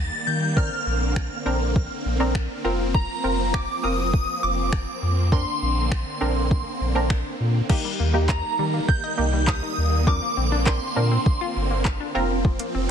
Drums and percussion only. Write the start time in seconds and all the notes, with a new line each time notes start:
0.57 kick
1.16 finger snap, kick
1.76 kick
2.35 finger snap, kick
2.95 kick
3.54 finger snap, kick
4.14 kick
4.73 finger snap, kick
5.32 kick
5.92 finger snap, kick
6.51 kick
7.10 finger snap, kick
7.70 kick, crash
8.29 kick, clap
8.89 kick
9.47 kick, clap
10.07 kick
10.66 kick, clap
11.26 kick
11.85 kick, clap
12.45 kick
12.59 closed hi-hat